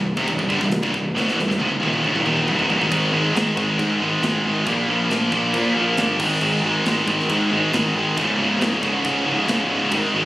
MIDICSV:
0, 0, Header, 1, 4, 480
1, 0, Start_track
1, 0, Tempo, 438276
1, 1274, Time_signature, 4, 2, 24, 8
1, 11227, End_track
2, 0, Start_track
2, 0, Title_t, "Distorted electric guitar"
2, 0, Program_c, 0, 30
2, 0, Note_on_c, 0, 36, 73
2, 0, Note_on_c, 0, 43, 69
2, 141, Note_off_c, 0, 36, 0
2, 143, Note_off_c, 0, 43, 0
2, 185, Note_on_c, 0, 41, 91
2, 195, Note_on_c, 0, 48, 99
2, 299, Note_off_c, 0, 41, 0
2, 303, Note_on_c, 0, 36, 63
2, 307, Note_off_c, 0, 48, 0
2, 312, Note_on_c, 0, 43, 71
2, 410, Note_off_c, 0, 36, 0
2, 415, Note_off_c, 0, 43, 0
2, 423, Note_on_c, 0, 36, 67
2, 428, Note_on_c, 0, 43, 78
2, 545, Note_off_c, 0, 43, 0
2, 548, Note_off_c, 0, 36, 0
2, 558, Note_on_c, 0, 43, 95
2, 562, Note_on_c, 0, 50, 107
2, 654, Note_off_c, 0, 43, 0
2, 663, Note_off_c, 0, 50, 0
2, 665, Note_on_c, 0, 36, 66
2, 668, Note_on_c, 0, 43, 67
2, 861, Note_off_c, 0, 36, 0
2, 862, Note_off_c, 0, 43, 0
2, 905, Note_on_c, 0, 36, 88
2, 917, Note_on_c, 0, 43, 106
2, 1012, Note_off_c, 0, 36, 0
2, 1018, Note_off_c, 0, 43, 0
2, 1025, Note_on_c, 0, 36, 60
2, 1031, Note_on_c, 0, 43, 66
2, 1221, Note_off_c, 0, 36, 0
2, 1224, Note_off_c, 0, 43, 0
2, 1271, Note_on_c, 0, 38, 96
2, 1279, Note_on_c, 0, 45, 94
2, 1279, Note_on_c, 0, 50, 118
2, 1502, Note_off_c, 0, 38, 0
2, 1504, Note_off_c, 0, 45, 0
2, 1506, Note_on_c, 0, 36, 64
2, 1509, Note_off_c, 0, 50, 0
2, 1509, Note_on_c, 0, 43, 70
2, 1608, Note_off_c, 0, 36, 0
2, 1614, Note_off_c, 0, 43, 0
2, 1621, Note_on_c, 0, 36, 63
2, 1627, Note_on_c, 0, 43, 62
2, 1738, Note_off_c, 0, 36, 0
2, 1743, Note_on_c, 0, 41, 88
2, 1750, Note_off_c, 0, 43, 0
2, 1755, Note_on_c, 0, 48, 102
2, 1857, Note_off_c, 0, 41, 0
2, 1862, Note_on_c, 0, 36, 61
2, 1863, Note_off_c, 0, 48, 0
2, 1868, Note_on_c, 0, 43, 78
2, 1964, Note_off_c, 0, 36, 0
2, 1968, Note_on_c, 0, 39, 92
2, 1975, Note_off_c, 0, 43, 0
2, 1980, Note_on_c, 0, 46, 98
2, 1986, Note_on_c, 0, 51, 104
2, 2214, Note_off_c, 0, 39, 0
2, 2219, Note_on_c, 0, 38, 92
2, 2220, Note_off_c, 0, 46, 0
2, 2223, Note_off_c, 0, 51, 0
2, 2227, Note_on_c, 0, 45, 87
2, 2329, Note_off_c, 0, 38, 0
2, 2334, Note_on_c, 0, 36, 79
2, 2335, Note_off_c, 0, 45, 0
2, 2340, Note_on_c, 0, 43, 103
2, 2456, Note_off_c, 0, 36, 0
2, 2460, Note_off_c, 0, 43, 0
2, 2460, Note_on_c, 0, 39, 98
2, 2465, Note_on_c, 0, 46, 96
2, 2472, Note_on_c, 0, 51, 115
2, 2700, Note_off_c, 0, 39, 0
2, 2703, Note_off_c, 0, 46, 0
2, 2706, Note_off_c, 0, 51, 0
2, 2709, Note_on_c, 0, 36, 95
2, 2715, Note_on_c, 0, 43, 93
2, 2824, Note_off_c, 0, 36, 0
2, 2827, Note_off_c, 0, 43, 0
2, 2833, Note_on_c, 0, 41, 97
2, 2841, Note_on_c, 0, 48, 106
2, 2947, Note_off_c, 0, 41, 0
2, 2950, Note_off_c, 0, 48, 0
2, 2956, Note_on_c, 0, 36, 93
2, 2969, Note_on_c, 0, 43, 99
2, 3068, Note_off_c, 0, 36, 0
2, 3072, Note_on_c, 0, 44, 94
2, 3074, Note_off_c, 0, 43, 0
2, 3082, Note_on_c, 0, 51, 97
2, 3183, Note_off_c, 0, 44, 0
2, 3191, Note_off_c, 0, 51, 0
2, 3196, Note_on_c, 0, 44, 103
2, 3203, Note_on_c, 0, 51, 101
2, 3208, Note_on_c, 0, 56, 119
2, 3415, Note_off_c, 0, 44, 0
2, 3420, Note_off_c, 0, 51, 0
2, 3428, Note_on_c, 0, 44, 76
2, 3430, Note_off_c, 0, 56, 0
2, 3433, Note_on_c, 0, 51, 84
2, 3443, Note_on_c, 0, 56, 95
2, 3652, Note_off_c, 0, 44, 0
2, 3658, Note_off_c, 0, 51, 0
2, 3666, Note_on_c, 0, 44, 79
2, 3668, Note_off_c, 0, 56, 0
2, 3671, Note_on_c, 0, 51, 94
2, 3681, Note_on_c, 0, 56, 99
2, 3892, Note_off_c, 0, 44, 0
2, 3902, Note_off_c, 0, 51, 0
2, 3905, Note_on_c, 0, 44, 96
2, 3909, Note_off_c, 0, 56, 0
2, 3915, Note_on_c, 0, 51, 107
2, 3922, Note_on_c, 0, 56, 105
2, 4139, Note_off_c, 0, 44, 0
2, 4146, Note_off_c, 0, 51, 0
2, 4151, Note_off_c, 0, 56, 0
2, 4152, Note_on_c, 0, 44, 83
2, 4159, Note_on_c, 0, 51, 86
2, 4164, Note_on_c, 0, 56, 89
2, 4364, Note_off_c, 0, 44, 0
2, 4374, Note_off_c, 0, 51, 0
2, 4378, Note_on_c, 0, 44, 109
2, 4379, Note_off_c, 0, 56, 0
2, 4387, Note_on_c, 0, 51, 108
2, 4392, Note_on_c, 0, 56, 127
2, 4607, Note_off_c, 0, 44, 0
2, 4616, Note_off_c, 0, 51, 0
2, 4619, Note_off_c, 0, 56, 0
2, 4620, Note_on_c, 0, 44, 77
2, 4629, Note_on_c, 0, 51, 84
2, 4632, Note_on_c, 0, 56, 93
2, 4855, Note_off_c, 0, 44, 0
2, 4861, Note_off_c, 0, 51, 0
2, 4868, Note_on_c, 0, 44, 77
2, 4870, Note_off_c, 0, 56, 0
2, 4874, Note_on_c, 0, 51, 91
2, 4883, Note_on_c, 0, 56, 91
2, 5096, Note_off_c, 0, 44, 0
2, 5099, Note_off_c, 0, 51, 0
2, 5104, Note_off_c, 0, 56, 0
2, 5107, Note_on_c, 0, 46, 91
2, 5115, Note_on_c, 0, 53, 112
2, 5120, Note_on_c, 0, 58, 111
2, 5328, Note_off_c, 0, 46, 0
2, 5339, Note_off_c, 0, 53, 0
2, 5341, Note_on_c, 0, 46, 79
2, 5345, Note_off_c, 0, 58, 0
2, 5352, Note_on_c, 0, 53, 86
2, 5359, Note_on_c, 0, 58, 106
2, 5574, Note_off_c, 0, 46, 0
2, 5585, Note_off_c, 0, 53, 0
2, 5587, Note_off_c, 0, 58, 0
2, 5587, Note_on_c, 0, 46, 74
2, 5598, Note_on_c, 0, 53, 80
2, 5600, Note_on_c, 0, 58, 92
2, 5819, Note_off_c, 0, 46, 0
2, 5824, Note_off_c, 0, 53, 0
2, 5831, Note_off_c, 0, 58, 0
2, 5832, Note_on_c, 0, 46, 100
2, 5838, Note_on_c, 0, 53, 96
2, 5844, Note_on_c, 0, 58, 113
2, 6048, Note_off_c, 0, 46, 0
2, 6056, Note_off_c, 0, 53, 0
2, 6061, Note_on_c, 0, 46, 81
2, 6065, Note_off_c, 0, 58, 0
2, 6069, Note_on_c, 0, 53, 95
2, 6078, Note_on_c, 0, 58, 95
2, 6286, Note_off_c, 0, 46, 0
2, 6295, Note_off_c, 0, 53, 0
2, 6299, Note_on_c, 0, 46, 117
2, 6303, Note_off_c, 0, 58, 0
2, 6308, Note_on_c, 0, 53, 111
2, 6316, Note_on_c, 0, 58, 125
2, 6540, Note_off_c, 0, 46, 0
2, 6551, Note_off_c, 0, 53, 0
2, 6552, Note_off_c, 0, 58, 0
2, 6553, Note_on_c, 0, 46, 87
2, 6564, Note_on_c, 0, 53, 93
2, 6565, Note_on_c, 0, 58, 83
2, 6778, Note_off_c, 0, 46, 0
2, 6783, Note_off_c, 0, 53, 0
2, 6784, Note_off_c, 0, 58, 0
2, 6796, Note_on_c, 0, 44, 87
2, 6807, Note_on_c, 0, 51, 105
2, 6811, Note_on_c, 0, 56, 104
2, 7016, Note_off_c, 0, 44, 0
2, 7026, Note_off_c, 0, 51, 0
2, 7029, Note_on_c, 0, 44, 110
2, 7039, Note_on_c, 0, 51, 108
2, 7043, Note_off_c, 0, 56, 0
2, 7048, Note_on_c, 0, 56, 121
2, 7258, Note_off_c, 0, 44, 0
2, 7266, Note_off_c, 0, 51, 0
2, 7272, Note_on_c, 0, 44, 80
2, 7280, Note_on_c, 0, 51, 83
2, 7283, Note_off_c, 0, 56, 0
2, 7287, Note_on_c, 0, 56, 90
2, 7499, Note_off_c, 0, 44, 0
2, 7512, Note_off_c, 0, 51, 0
2, 7512, Note_on_c, 0, 44, 80
2, 7526, Note_on_c, 0, 51, 91
2, 7528, Note_off_c, 0, 56, 0
2, 7533, Note_on_c, 0, 56, 111
2, 7752, Note_off_c, 0, 44, 0
2, 7760, Note_off_c, 0, 51, 0
2, 7765, Note_on_c, 0, 44, 103
2, 7773, Note_on_c, 0, 51, 114
2, 7776, Note_off_c, 0, 56, 0
2, 7781, Note_on_c, 0, 56, 108
2, 7978, Note_off_c, 0, 44, 0
2, 7989, Note_off_c, 0, 51, 0
2, 7991, Note_on_c, 0, 44, 83
2, 8002, Note_on_c, 0, 51, 98
2, 8006, Note_off_c, 0, 56, 0
2, 8011, Note_on_c, 0, 56, 92
2, 8212, Note_off_c, 0, 44, 0
2, 8215, Note_off_c, 0, 51, 0
2, 8225, Note_on_c, 0, 44, 110
2, 8228, Note_off_c, 0, 56, 0
2, 8229, Note_on_c, 0, 51, 113
2, 8232, Note_on_c, 0, 56, 127
2, 8458, Note_off_c, 0, 44, 0
2, 8466, Note_off_c, 0, 51, 0
2, 8471, Note_on_c, 0, 44, 85
2, 8478, Note_off_c, 0, 56, 0
2, 8479, Note_on_c, 0, 51, 94
2, 8483, Note_on_c, 0, 56, 97
2, 8701, Note_off_c, 0, 44, 0
2, 8706, Note_off_c, 0, 51, 0
2, 8714, Note_on_c, 0, 44, 87
2, 8719, Note_on_c, 0, 51, 93
2, 8723, Note_off_c, 0, 56, 0
2, 8727, Note_on_c, 0, 56, 86
2, 8938, Note_off_c, 0, 44, 0
2, 8941, Note_off_c, 0, 51, 0
2, 8954, Note_on_c, 0, 37, 109
2, 8958, Note_on_c, 0, 44, 113
2, 8964, Note_off_c, 0, 56, 0
2, 8968, Note_on_c, 0, 49, 115
2, 9175, Note_off_c, 0, 37, 0
2, 9182, Note_off_c, 0, 44, 0
2, 9186, Note_off_c, 0, 49, 0
2, 9189, Note_on_c, 0, 37, 82
2, 9195, Note_on_c, 0, 44, 84
2, 9199, Note_on_c, 0, 49, 89
2, 9412, Note_off_c, 0, 37, 0
2, 9418, Note_off_c, 0, 44, 0
2, 9425, Note_on_c, 0, 37, 83
2, 9426, Note_off_c, 0, 49, 0
2, 9431, Note_on_c, 0, 44, 98
2, 9439, Note_on_c, 0, 49, 98
2, 9653, Note_off_c, 0, 37, 0
2, 9664, Note_off_c, 0, 44, 0
2, 9666, Note_on_c, 0, 37, 92
2, 9672, Note_off_c, 0, 49, 0
2, 9678, Note_on_c, 0, 44, 109
2, 9685, Note_on_c, 0, 49, 90
2, 9899, Note_off_c, 0, 37, 0
2, 9908, Note_off_c, 0, 44, 0
2, 9911, Note_off_c, 0, 49, 0
2, 9913, Note_on_c, 0, 37, 93
2, 9921, Note_on_c, 0, 44, 80
2, 9924, Note_on_c, 0, 49, 87
2, 10131, Note_off_c, 0, 37, 0
2, 10138, Note_off_c, 0, 44, 0
2, 10144, Note_on_c, 0, 37, 107
2, 10148, Note_off_c, 0, 49, 0
2, 10152, Note_on_c, 0, 44, 105
2, 10161, Note_on_c, 0, 49, 111
2, 10367, Note_off_c, 0, 37, 0
2, 10380, Note_on_c, 0, 37, 90
2, 10381, Note_off_c, 0, 44, 0
2, 10387, Note_off_c, 0, 49, 0
2, 10394, Note_on_c, 0, 44, 93
2, 10400, Note_on_c, 0, 49, 96
2, 10606, Note_off_c, 0, 37, 0
2, 10612, Note_off_c, 0, 44, 0
2, 10619, Note_on_c, 0, 37, 81
2, 10623, Note_off_c, 0, 49, 0
2, 10625, Note_on_c, 0, 44, 76
2, 10636, Note_on_c, 0, 49, 92
2, 10844, Note_off_c, 0, 44, 0
2, 10851, Note_off_c, 0, 37, 0
2, 10857, Note_on_c, 0, 44, 99
2, 10859, Note_off_c, 0, 49, 0
2, 10864, Note_on_c, 0, 51, 106
2, 10867, Note_on_c, 0, 56, 112
2, 11083, Note_off_c, 0, 44, 0
2, 11093, Note_off_c, 0, 51, 0
2, 11093, Note_off_c, 0, 56, 0
2, 11096, Note_on_c, 0, 44, 82
2, 11106, Note_on_c, 0, 51, 89
2, 11106, Note_on_c, 0, 56, 87
2, 11227, Note_off_c, 0, 44, 0
2, 11227, Note_off_c, 0, 51, 0
2, 11227, Note_off_c, 0, 56, 0
2, 11227, End_track
3, 0, Start_track
3, 0, Title_t, "Picked electric bass"
3, 0, Program_c, 1, 34
3, 0, Note_on_c, 1, 24, 85
3, 171, Note_off_c, 1, 24, 0
3, 185, Note_on_c, 1, 29, 117
3, 297, Note_off_c, 1, 29, 0
3, 304, Note_on_c, 1, 24, 69
3, 419, Note_off_c, 1, 24, 0
3, 424, Note_on_c, 1, 24, 79
3, 540, Note_off_c, 1, 24, 0
3, 547, Note_on_c, 1, 31, 94
3, 661, Note_off_c, 1, 31, 0
3, 666, Note_on_c, 1, 24, 75
3, 893, Note_off_c, 1, 24, 0
3, 906, Note_on_c, 1, 24, 95
3, 1021, Note_off_c, 1, 24, 0
3, 1027, Note_on_c, 1, 24, 84
3, 1253, Note_off_c, 1, 24, 0
3, 1268, Note_on_c, 1, 26, 90
3, 1494, Note_off_c, 1, 26, 0
3, 1501, Note_on_c, 1, 24, 84
3, 1618, Note_off_c, 1, 24, 0
3, 1624, Note_on_c, 1, 24, 83
3, 1740, Note_off_c, 1, 24, 0
3, 1751, Note_on_c, 1, 29, 89
3, 1855, Note_off_c, 1, 29, 0
3, 1862, Note_on_c, 1, 24, 77
3, 1979, Note_off_c, 1, 24, 0
3, 1985, Note_on_c, 1, 27, 95
3, 2212, Note_off_c, 1, 27, 0
3, 2222, Note_on_c, 1, 26, 93
3, 2334, Note_off_c, 1, 26, 0
3, 2340, Note_on_c, 1, 24, 97
3, 2454, Note_off_c, 1, 24, 0
3, 2461, Note_on_c, 1, 27, 95
3, 2690, Note_off_c, 1, 27, 0
3, 2705, Note_on_c, 1, 24, 91
3, 2816, Note_off_c, 1, 24, 0
3, 2823, Note_on_c, 1, 29, 93
3, 2928, Note_off_c, 1, 29, 0
3, 2935, Note_on_c, 1, 24, 96
3, 3055, Note_off_c, 1, 24, 0
3, 3061, Note_on_c, 1, 32, 92
3, 3179, Note_off_c, 1, 32, 0
3, 3191, Note_on_c, 1, 32, 95
3, 3397, Note_off_c, 1, 32, 0
3, 3422, Note_on_c, 1, 32, 99
3, 3632, Note_off_c, 1, 32, 0
3, 3662, Note_on_c, 1, 32, 89
3, 3872, Note_off_c, 1, 32, 0
3, 3909, Note_on_c, 1, 32, 86
3, 4116, Note_off_c, 1, 32, 0
3, 4153, Note_on_c, 1, 44, 82
3, 4358, Note_off_c, 1, 44, 0
3, 4381, Note_on_c, 1, 32, 98
3, 4591, Note_off_c, 1, 32, 0
3, 4616, Note_on_c, 1, 32, 103
3, 4828, Note_off_c, 1, 32, 0
3, 4861, Note_on_c, 1, 32, 103
3, 5071, Note_off_c, 1, 32, 0
3, 5109, Note_on_c, 1, 34, 84
3, 5316, Note_off_c, 1, 34, 0
3, 5351, Note_on_c, 1, 34, 94
3, 5557, Note_off_c, 1, 34, 0
3, 5586, Note_on_c, 1, 34, 95
3, 5794, Note_off_c, 1, 34, 0
3, 5828, Note_on_c, 1, 34, 74
3, 6035, Note_off_c, 1, 34, 0
3, 6064, Note_on_c, 1, 46, 81
3, 6272, Note_off_c, 1, 46, 0
3, 6293, Note_on_c, 1, 34, 91
3, 6506, Note_off_c, 1, 34, 0
3, 6544, Note_on_c, 1, 31, 87
3, 6752, Note_off_c, 1, 31, 0
3, 6786, Note_on_c, 1, 32, 94
3, 6993, Note_off_c, 1, 32, 0
3, 7023, Note_on_c, 1, 32, 86
3, 7232, Note_off_c, 1, 32, 0
3, 7264, Note_on_c, 1, 32, 97
3, 7472, Note_off_c, 1, 32, 0
3, 7506, Note_on_c, 1, 32, 88
3, 7713, Note_off_c, 1, 32, 0
3, 7746, Note_on_c, 1, 32, 91
3, 7953, Note_off_c, 1, 32, 0
3, 7991, Note_on_c, 1, 44, 83
3, 8196, Note_off_c, 1, 44, 0
3, 8229, Note_on_c, 1, 32, 90
3, 8435, Note_off_c, 1, 32, 0
3, 8467, Note_on_c, 1, 32, 99
3, 8674, Note_off_c, 1, 32, 0
3, 8708, Note_on_c, 1, 32, 91
3, 8914, Note_off_c, 1, 32, 0
3, 8953, Note_on_c, 1, 25, 86
3, 9157, Note_off_c, 1, 25, 0
3, 9179, Note_on_c, 1, 25, 99
3, 9389, Note_off_c, 1, 25, 0
3, 9418, Note_on_c, 1, 25, 92
3, 9628, Note_off_c, 1, 25, 0
3, 9669, Note_on_c, 1, 25, 77
3, 9875, Note_off_c, 1, 25, 0
3, 9910, Note_on_c, 1, 37, 93
3, 10115, Note_off_c, 1, 37, 0
3, 10144, Note_on_c, 1, 25, 87
3, 10352, Note_off_c, 1, 25, 0
3, 10378, Note_on_c, 1, 25, 83
3, 10589, Note_off_c, 1, 25, 0
3, 10617, Note_on_c, 1, 25, 86
3, 10828, Note_off_c, 1, 25, 0
3, 10863, Note_on_c, 1, 32, 88
3, 11071, Note_off_c, 1, 32, 0
3, 11110, Note_on_c, 1, 32, 95
3, 11227, Note_off_c, 1, 32, 0
3, 11227, End_track
4, 0, Start_track
4, 0, Title_t, "Drums"
4, 186, Note_on_c, 9, 36, 89
4, 296, Note_off_c, 9, 36, 0
4, 299, Note_on_c, 9, 49, 64
4, 305, Note_on_c, 9, 36, 97
4, 408, Note_off_c, 9, 49, 0
4, 414, Note_off_c, 9, 36, 0
4, 427, Note_on_c, 9, 36, 78
4, 536, Note_off_c, 9, 36, 0
4, 548, Note_on_c, 9, 36, 88
4, 657, Note_off_c, 9, 36, 0
4, 668, Note_on_c, 9, 36, 77
4, 676, Note_on_c, 9, 38, 30
4, 778, Note_off_c, 9, 36, 0
4, 782, Note_on_c, 9, 49, 67
4, 785, Note_off_c, 9, 38, 0
4, 793, Note_on_c, 9, 38, 116
4, 891, Note_off_c, 9, 49, 0
4, 902, Note_off_c, 9, 38, 0
4, 911, Note_on_c, 9, 36, 93
4, 1021, Note_off_c, 9, 36, 0
4, 1030, Note_on_c, 9, 36, 82
4, 1140, Note_off_c, 9, 36, 0
4, 1279, Note_on_c, 9, 38, 77
4, 1388, Note_off_c, 9, 38, 0
4, 1405, Note_on_c, 9, 38, 65
4, 1514, Note_off_c, 9, 38, 0
4, 1526, Note_on_c, 9, 38, 64
4, 1636, Note_off_c, 9, 38, 0
4, 1651, Note_on_c, 9, 38, 66
4, 1756, Note_on_c, 9, 48, 77
4, 1761, Note_off_c, 9, 38, 0
4, 1866, Note_off_c, 9, 48, 0
4, 1879, Note_on_c, 9, 48, 72
4, 1989, Note_off_c, 9, 48, 0
4, 2007, Note_on_c, 9, 48, 92
4, 2116, Note_off_c, 9, 48, 0
4, 2121, Note_on_c, 9, 47, 61
4, 2230, Note_off_c, 9, 47, 0
4, 2238, Note_on_c, 9, 47, 88
4, 2347, Note_off_c, 9, 47, 0
4, 2362, Note_on_c, 9, 47, 75
4, 2471, Note_off_c, 9, 47, 0
4, 2474, Note_on_c, 9, 45, 96
4, 2583, Note_off_c, 9, 45, 0
4, 2597, Note_on_c, 9, 45, 84
4, 2706, Note_off_c, 9, 45, 0
4, 2716, Note_on_c, 9, 45, 106
4, 2825, Note_off_c, 9, 45, 0
4, 2839, Note_on_c, 9, 43, 89
4, 2948, Note_off_c, 9, 43, 0
4, 2957, Note_on_c, 9, 43, 110
4, 3067, Note_off_c, 9, 43, 0
4, 3083, Note_on_c, 9, 43, 94
4, 3193, Note_off_c, 9, 43, 0
4, 3195, Note_on_c, 9, 36, 122
4, 3197, Note_on_c, 9, 49, 73
4, 3304, Note_off_c, 9, 36, 0
4, 3307, Note_off_c, 9, 49, 0
4, 3683, Note_on_c, 9, 49, 67
4, 3694, Note_on_c, 9, 38, 114
4, 3792, Note_off_c, 9, 49, 0
4, 3803, Note_off_c, 9, 38, 0
4, 3914, Note_on_c, 9, 36, 96
4, 4023, Note_off_c, 9, 36, 0
4, 4154, Note_on_c, 9, 36, 116
4, 4159, Note_on_c, 9, 49, 58
4, 4264, Note_off_c, 9, 36, 0
4, 4269, Note_off_c, 9, 49, 0
4, 4632, Note_on_c, 9, 49, 63
4, 4643, Note_on_c, 9, 38, 117
4, 4742, Note_off_c, 9, 49, 0
4, 4753, Note_off_c, 9, 38, 0
4, 5109, Note_on_c, 9, 49, 63
4, 5110, Note_on_c, 9, 36, 127
4, 5219, Note_off_c, 9, 49, 0
4, 5220, Note_off_c, 9, 36, 0
4, 5591, Note_on_c, 9, 49, 60
4, 5602, Note_on_c, 9, 38, 111
4, 5700, Note_off_c, 9, 49, 0
4, 5711, Note_off_c, 9, 38, 0
4, 5828, Note_on_c, 9, 36, 95
4, 5938, Note_off_c, 9, 36, 0
4, 6066, Note_on_c, 9, 49, 68
4, 6068, Note_on_c, 9, 36, 105
4, 6175, Note_off_c, 9, 49, 0
4, 6177, Note_off_c, 9, 36, 0
4, 6541, Note_on_c, 9, 49, 67
4, 6552, Note_on_c, 9, 38, 127
4, 6651, Note_off_c, 9, 49, 0
4, 6662, Note_off_c, 9, 38, 0
4, 6786, Note_on_c, 9, 49, 110
4, 6787, Note_on_c, 9, 36, 107
4, 6895, Note_off_c, 9, 49, 0
4, 6897, Note_off_c, 9, 36, 0
4, 7021, Note_on_c, 9, 49, 80
4, 7130, Note_off_c, 9, 49, 0
4, 7508, Note_on_c, 9, 49, 60
4, 7519, Note_on_c, 9, 38, 105
4, 7618, Note_off_c, 9, 49, 0
4, 7629, Note_off_c, 9, 38, 0
4, 7642, Note_on_c, 9, 38, 34
4, 7749, Note_on_c, 9, 36, 82
4, 7751, Note_off_c, 9, 38, 0
4, 7859, Note_off_c, 9, 36, 0
4, 7880, Note_on_c, 9, 38, 28
4, 7989, Note_off_c, 9, 38, 0
4, 7992, Note_on_c, 9, 36, 114
4, 7995, Note_on_c, 9, 49, 60
4, 8101, Note_off_c, 9, 36, 0
4, 8105, Note_off_c, 9, 49, 0
4, 8468, Note_on_c, 9, 49, 70
4, 8479, Note_on_c, 9, 38, 127
4, 8577, Note_off_c, 9, 49, 0
4, 8588, Note_off_c, 9, 38, 0
4, 8954, Note_on_c, 9, 36, 127
4, 8954, Note_on_c, 9, 49, 65
4, 9063, Note_off_c, 9, 36, 0
4, 9064, Note_off_c, 9, 49, 0
4, 9432, Note_on_c, 9, 49, 61
4, 9443, Note_on_c, 9, 38, 107
4, 9542, Note_off_c, 9, 49, 0
4, 9553, Note_off_c, 9, 38, 0
4, 9670, Note_on_c, 9, 36, 94
4, 9780, Note_off_c, 9, 36, 0
4, 9906, Note_on_c, 9, 49, 64
4, 9909, Note_on_c, 9, 36, 112
4, 10015, Note_off_c, 9, 49, 0
4, 10018, Note_off_c, 9, 36, 0
4, 10385, Note_on_c, 9, 49, 69
4, 10396, Note_on_c, 9, 38, 121
4, 10495, Note_off_c, 9, 49, 0
4, 10506, Note_off_c, 9, 38, 0
4, 10858, Note_on_c, 9, 49, 77
4, 10863, Note_on_c, 9, 36, 124
4, 10967, Note_off_c, 9, 49, 0
4, 10973, Note_off_c, 9, 36, 0
4, 11227, End_track
0, 0, End_of_file